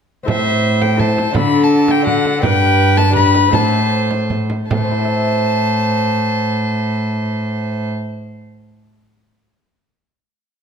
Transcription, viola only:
0.28 C5
1.00 C5
1.35 A4
2.07 A4
2.43 B4
3.14 B4
3.52 C5
4.70 C5

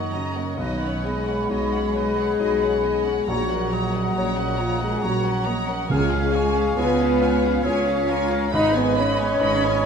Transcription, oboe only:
Already playing: C#5
0.60 B4
1.51 C#5
1.96 B4
3.29 C#5
3.73 D#5
5.03 C#5
5.47 D#5
5.91 F5
6.35 C#5
6.78 D#5
7.22 F5
7.66 G#4
8.10 A#4
8.54 B4
9.41 D#5

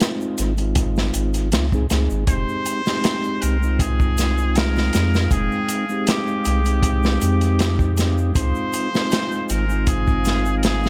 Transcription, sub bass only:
0.39 G#1
1.15 G#1
1.53 C#2
1.91 C#2
2.11 G#1
2.28 F1
3.43 C2
4.95 F2
5.31 F1
6.46 C2
7.22 F2
8.36 C#2
9.50 G#1

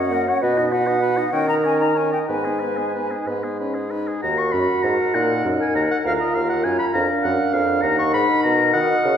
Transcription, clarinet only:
Already playing: D#5
0.12 C#5
0.42 B4
1.32 A#4
2.28 B4
4.22 F#5
6.04 A#5
6.94 F5
7.83 F#5
8.74 D#5

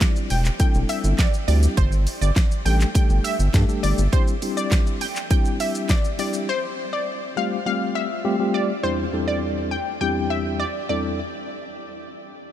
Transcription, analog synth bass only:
0.31 E1
0.75 E1
1.04 G1
1.48 D2
1.78 G1
2.22 G1
2.65 A1
3.10 G1
3.39 G1
3.54 G2
3.84 G1
3.98 G1

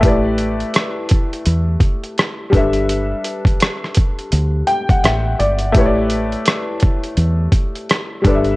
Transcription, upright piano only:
Already playing: E5
0.01 A3 E4 G4
0.05 B4 D5
2.50 G3 D4 A4
2.55 B4 E5
4.67 G5
4.90 F#5
5.04 E5
5.39 D5
5.72 A3 E4 G4
5.77 B4 C#5
5.85 D5
8.22 G3 D4 A4
8.27 B4 D5
8.35 E5

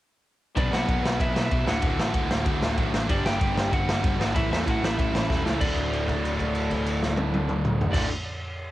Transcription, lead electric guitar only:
0.57 D4 D5
0.73 F#4 F#5
1.21 E4 E5
1.45 E4 E5
1.69 F#4 F#5
3.10 D4 D5
3.26 G4 G5
3.73 F#4 F#5
4.34 E4 E5
4.52 E4 E5
4.70 F#4 F#5
4.85 E4 E5
5.61 D5
7.93 D5

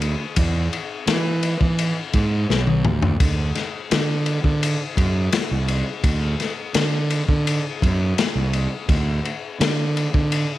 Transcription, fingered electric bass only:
Already playing: D2
0.37 E2
1.08 E3
1.61 E3
2.14 G#2
2.50 B1
2.85 D2
3.20 D2
3.92 D3
4.45 D3
4.98 F#2
5.51 C2
6.04 D2
6.75 D3
7.28 D3
7.83 F#2
8.35 C2
8.88 D2
9.60 D3
10.14 D3

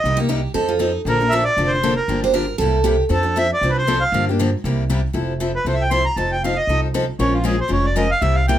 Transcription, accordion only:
Already playing: D#5
1.09 A#4
1.29 E5
1.44 D5
1.68 C5
1.96 A#4
3.12 A4
3.38 E5
3.54 D5
3.70 B4
3.78 C5
4.01 F5
5.56 B4
5.68 C5
5.74 E5
5.81 G5
5.91 C6
6.05 A#5
6.17 A5
6.32 G5
6.44 F5
6.56 D#5
7.20 C#5
7.34 F4
7.46 G#4
7.61 C5
7.73 C#5
7.85 D5
7.96 D#5
8.11 F5
8.21 E5
8.35 F5
8.48 G5

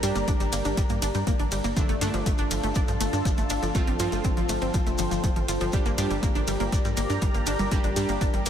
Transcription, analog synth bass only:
0.03 G2
0.16 G1
0.28 G1
0.40 G1
0.53 G1
0.65 G1
0.77 G1
0.90 G2
1.02 G1
1.15 G2
1.27 G1
1.39 G1
1.52 G1
1.64 G1
1.77 G1
1.89 G1
2.01 G2
2.14 G1
2.26 G1
2.39 G1
2.51 G1
2.63 G1
2.76 G1
2.88 G2
3.01 G1
3.13 G2
3.25 G1
3.38 G1
3.50 G1
3.63 G1
3.75 G1
3.87 G1
4.00 G2
4.12 G1
4.24 G1
4.37 G1
4.49 G1
4.62 G1
4.74 G1
4.87 F1
4.99 G1
5.11 G1
5.24 F1
5.36 G1
5.48 G1
5.61 G1
5.73 G1
5.86 G1
5.98 G2
6.10 G1
6.35 G1
6.48 G1
6.60 G1
6.72 G1
6.85 G2
6.97 G1
7.10 G2
7.22 G1
7.35 G1
7.47 G1
7.59 G1
7.72 G1
7.84 G1
7.96 G2
8.09 G1
8.21 G1
8.34 G1
8.46 G1

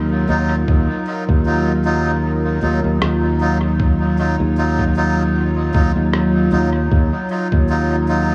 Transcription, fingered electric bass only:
Already playing: D#2
0.29 D#2
0.68 D#2
1.29 D#2
2.63 D#2
2.84 D#2
3.01 D#2
4.40 D#2
5.74 D#2
5.96 D#2
6.52 D#2
6.91 D#2
7.52 D#2

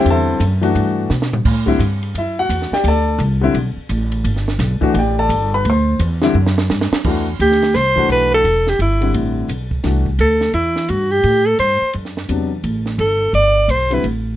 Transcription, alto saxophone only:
7.41 G4
7.76 C5
8.12 B4
8.34 A4
8.69 G4
8.82 E4
10.21 A4
10.54 E4
10.90 F#4
11.11 G4
11.46 A4
11.60 C5
13.00 A4
13.35 D5
13.71 C5
13.93 B4

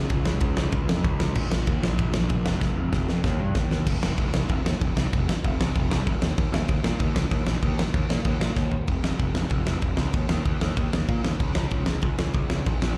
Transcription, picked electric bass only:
0.10 C#2
0.26 C#2
0.41 C#2
0.57 C#2
0.73 C#2
0.88 F2
1.04 C#2
1.36 A#1
1.67 D#2
1.82 A#1
1.99 A#1
2.14 A#1
2.30 A#1
2.45 F1
2.61 F1
2.76 F1
2.92 F1
3.08 F2
3.24 D#2
3.39 G2
3.55 D#2
3.86 F1
4.02 F1
4.18 F1
4.34 C2
4.50 F1
4.65 D#2
4.81 F1
4.95 C2
5.14 F1
5.44 F1
5.60 C2
5.76 F1
5.90 C2
6.07 F1
6.22 D#2
6.38 D#2
6.52 D#2
6.69 D#2
6.83 A#2
7.00 D#2
7.14 C#2
7.31 D#2
7.47 A#1
7.63 D#2
7.94 D#2
8.10 A#2
8.26 D#2
8.40 A#2
8.57 D#2
8.88 F1
9.03 F1
9.19 F1
9.34 F1
9.50 F1
9.66 F1
9.82 F1
9.98 C#2
10.14 D#2
10.29 D#2
10.46 D#2
10.61 D#2
10.77 D#2
10.93 D#2
11.09 A#2
11.24 D#2
11.40 C#2
11.56 C#2
11.72 C#2
11.86 C#2
12.03 C#2
12.18 C#2
12.34 C#2
12.50 C#2
12.66 A#1
12.82 A#1

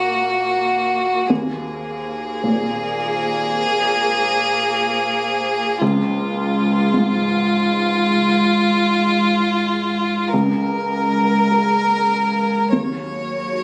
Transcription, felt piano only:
Already playing: A#2
1.30 D#2
2.44 A#2
5.82 C#2
6.94 G#2
10.33 C#2
11.51 G#4 A#4
12.72 D#2

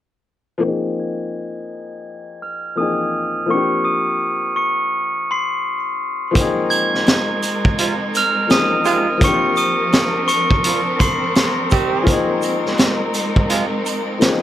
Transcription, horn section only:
7.78 C3 F3 G#3 F4
8.85 C3 F3 G#3 F4
10.65 D3 F3 A#3 F4
11.71 D#3 G3 C4 G4
13.50 C3 F3 G#3 F4

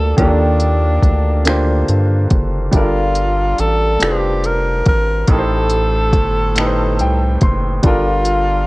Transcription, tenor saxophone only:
Already playing: A4
0.18 D4
2.75 F4
3.60 A4
4.03 G4
4.46 A#4
4.88 A#4
5.31 A4
7.86 F4

